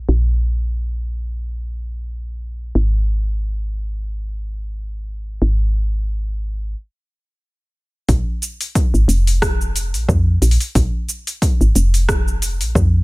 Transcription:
0.09 2.72 A#1 medium
2.75 5.39 G#1 medium
5.42 6.75 G#1 medium
8.09 8.24 A#1 loud
8.09 kick loud
8.09 open hi-hat medium
8.09 cabasa soft
8.42 open hi-hat soft
8.42 cabasa medium
8.61 open hi-hat soft
8.61 cabasa soft
8.75 kick loud
8.75 open hi-hat medium
8.75 cabasa soft
8.94 9.06 G#1 medium
8.94 cabasa soft
9.08 9.95 F1 medium
9.08 open hi-hat soft
9.08 cabasa medium
9.27 open hi-hat soft
9.27 cabasa soft
9.42 kick loud
9.42 cross-stick medium
9.42 open hi-hat medium
9.42 cabasa soft
9.61 cabasa soft
9.76 open hi-hat medium
9.76 cabasa medium
9.94 10.06 A#1 loud
9.94 open hi-hat soft
9.94 cabasa soft
10.09 10.37 F2 medium
10.09 kick loud
10.09 cabasa soft
10.42 10.58 A#1 medium
10.42 open hi-hat soft
10.42 cabasa medium
10.51 open hi-hat medium
10.60 open hi-hat soft
10.60 cabasa soft
10.75 10.91 A#1 medium
10.75 kick loud
10.75 open hi-hat medium
10.75 cabasa soft
11.09 open hi-hat soft
11.09 cabasa medium
11.27 open hi-hat soft
11.27 cabasa soft
11.42 kick loud
11.42 open hi-hat medium
11.42 cabasa soft
11.61 11.73 G#1 medium
11.61 cabasa soft
11.75 12.62 F1 medium
11.75 open hi-hat soft
11.75 cabasa medium
11.94 open hi-hat soft
11.94 cabasa soft
12.09 kick loud
12.09 cross-stick medium
12.09 open hi-hat medium
12.09 cabasa soft
12.28 cabasa soft
12.42 open hi-hat medium
12.42 cabasa medium
12.61 12.73 A#1 medium
12.61 open hi-hat soft
12.61 cabasa soft
12.75 13.03 F2 medium
12.75 kick loud
12.75 cabasa soft

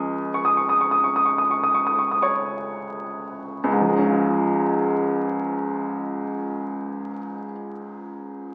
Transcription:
0.00 3.58 C#2 soft
0.00 3.59 F3 soft
0.00 3.59 C#4 soft
0.00 3.60 G#4 soft
0.00 0.29 D#5 medium
0.00 0.29 G#5 medium
0.00 0.33 D#6 medium
0.34 0.46 C#6 soft
0.45 0.57 D#6 soft
0.57 0.69 C#6 soft
0.69 0.80 D#6 soft
0.81 0.92 C#6 soft
0.91 1.03 D#6 soft
1.04 1.16 C#6 soft
1.16 1.28 D#6 soft
1.26 1.38 C#6 soft
1.38 1.51 D#6 soft
1.51 1.63 C#6 soft
1.63 1.76 D#6 soft
1.74 1.87 C#6 soft
1.87 2.00 D#6 soft
1.99 2.12 C#6 soft
2.11 2.25 D#6 soft
2.22 3.02 C#5 soft
2.22 3.05 C#6 medium
3.64 7.09 C#2 medium
3.72 7.18 G#2 soft
3.80 7.26 F3 soft
3.89 7.35 G#3 soft
3.98 7.44 C#4 soft
4.07 7.52 F4 soft

